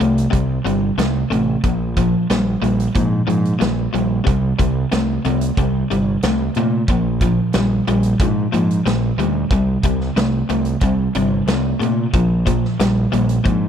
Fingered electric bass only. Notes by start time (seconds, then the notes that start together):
0.01 C2
0.33 C2
0.65 G1
0.98 C2
1.30 A1
1.64 A#1
2.30 A#1
2.62 A#1
2.96 G#2
3.28 G#2
3.61 A#1
3.94 A#1
4.27 C2
4.59 C2
4.92 C2
5.25 C2
5.57 C2
5.91 G1
6.23 C2
6.56 A#2
6.88 A#1
7.55 A#1
7.88 A#1
8.20 G#2
8.54 G#2
8.86 A#1
9.18 D2
9.51 C2
9.83 C2
10.16 C2
10.50 C2
10.81 C2
11.15 G1
11.47 C2
11.80 A#2
12.13 A#1
12.80 A#1
13.13 A#1
13.46 G#2